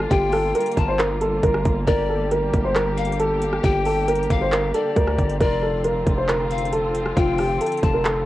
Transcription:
0.00 8.26 D3 medium
0.00 5.36 G3 medium
0.00 5.36 A#3 medium
0.00 1.84 F4 medium
0.00 cross-stick medium
0.11 0.53 G1 loud
0.11 0.32 G4 medium
0.11 0.73 G5 loud
0.11 kick loud
0.11 closed hi-hat medium
0.32 0.54 A4 medium
0.32 cross-stick medium
0.32 open hi-hat medium
0.55 0.86 A#4 medium
0.55 closed hi-hat medium
0.61 closed hi-hat medium
0.66 closed hi-hat medium
0.72 closed hi-hat soft
0.77 1.41 G1 loud
0.77 0.98 A5 medium
0.77 kick loud
0.77 closed hi-hat medium
0.88 0.98 C5 medium
0.99 1.20 A#4 medium
0.99 clap loud
0.99 closed hi-hat medium
1.21 1.42 A4 medium
1.21 closed hi-hat medium
1.43 1.64 G1 loud
1.43 1.85 A#4 medium
1.43 kick loud
1.43 closed hi-hat medium
1.54 cross-stick loud
1.65 1.87 G1 loud
1.65 kick loud
1.65 closed hi-hat medium
1.87 2.51 G1 loud
1.87 5.37 G4 medium
1.87 2.08 A#4 loud
1.87 2.29 D5 loud
1.87 kick loud
1.87 closed hi-hat medium
2.09 2.30 A4 medium
2.31 2.63 A#4 medium
2.31 closed hi-hat medium
2.54 3.60 G1 loud
2.54 kick loud
2.54 closed hi-hat medium
2.65 2.75 C5 medium
2.76 3.17 A#4 medium
2.76 clap loud
2.76 closed hi-hat medium
2.98 3.19 F5 loud
2.98 closed hi-hat medium
3.05 closed hi-hat medium
3.12 closed hi-hat medium
3.20 3.61 A4 loud
3.20 closed hi-hat medium
3.42 closed hi-hat medium
3.53 cross-stick medium
3.64 4.27 G1 loud
3.64 3.85 G4 medium
3.64 4.26 G5 loud
3.64 kick loud
3.64 closed hi-hat medium
3.85 4.07 A4 medium
3.85 open hi-hat medium
4.08 4.39 A#4 medium
4.08 closed hi-hat medium
4.15 closed hi-hat medium
4.23 closed hi-hat soft
4.30 4.72 G1 loud
4.30 4.72 F5 medium
4.30 kick loud
4.30 closed hi-hat medium
4.41 4.51 C5 medium
4.52 4.73 A#4 medium
4.52 clap loud
4.52 closed hi-hat medium
4.74 4.95 A4 medium
4.74 5.36 D5 medium
4.74 closed hi-hat medium
4.96 5.17 D2 loud
4.96 5.38 A#4 medium
4.96 kick loud
4.96 closed hi-hat medium
5.07 cross-stick loud
5.18 5.39 G1 loud
5.18 kick loud
5.18 closed hi-hat medium
5.29 closed hi-hat medium
5.40 6.04 F1 loud
5.40 8.26 F3 medium
5.40 8.26 C4 medium
5.40 8.26 F4 medium
5.40 5.61 A#4 loud
5.40 5.82 D5 loud
5.40 kick loud
5.40 closed hi-hat medium
5.62 5.83 A4 medium
5.84 6.16 A#4 medium
5.84 closed hi-hat medium
6.07 7.13 F1 loud
6.07 kick loud
6.07 closed hi-hat medium
6.18 6.28 C5 medium
6.29 6.70 A#4 medium
6.29 clap loud
6.29 closed hi-hat medium
6.51 6.72 F5 medium
6.51 closed hi-hat medium
6.58 closed hi-hat medium
6.65 closed hi-hat medium
6.73 7.14 A4 medium
6.73 closed hi-hat medium
6.95 closed hi-hat medium
7.06 cross-stick medium
7.17 7.59 F1 loud
7.17 7.38 F4 medium
7.17 7.79 G5 loud
7.17 kick loud
7.17 closed hi-hat medium
7.38 7.60 G4 medium
7.38 cross-stick medium
7.38 open hi-hat medium
7.61 7.92 A4 medium
7.61 closed hi-hat medium
7.66 closed hi-hat medium
7.72 closed hi-hat medium
7.77 closed hi-hat soft
7.83 8.26 F1 loud
7.83 8.04 A5 medium
7.83 kick loud
7.83 closed hi-hat medium
7.94 8.04 A#4 medium
8.05 8.26 A4 medium
8.05 clap loud
8.05 closed hi-hat medium

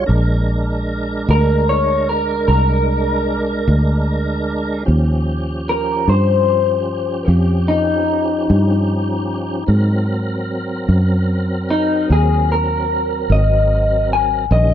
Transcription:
0.06 1.25 A#1 medium
0.06 4.84 G#3 medium
0.06 4.83 D4 medium
0.06 4.83 A#4 medium
1.28 2.45 D2 medium
1.28 1.68 A#4 medium
1.69 2.07 C#5 medium
2.09 2.47 A#4 medium
2.48 3.64 C2 medium
2.48 4.84 A#4 medium
3.68 4.84 D2 medium
4.85 6.05 D#2 medium
4.85 9.64 F3 soft
4.85 9.64 C#4 medium
4.85 9.64 G4 soft
5.69 6.08 A#4 medium
6.08 7.25 G2 medium
6.08 7.28 C5 medium
7.28 8.45 F2 medium
7.28 7.67 G4 medium
7.68 10.05 D#4 medium
8.50 9.66 G2 medium
9.67 10.85 G#2 medium
9.67 14.46 F#3 medium
9.67 14.45 C4 medium
9.67 14.46 A#4 medium
10.89 12.06 F#2 medium
11.71 12.09 D#4 medium
12.10 13.27 D#2 medium
12.10 12.50 G#4 medium
12.52 13.29 A#4 medium
13.30 14.47 G#1 medium
13.30 14.09 D#5 medium
14.13 14.51 G#5 medium
14.51 14.74 A#1 medium
14.51 14.74 D#3 medium
14.51 14.74 G3 medium
14.51 14.74 C#4 medium
14.51 14.74 D#5 medium

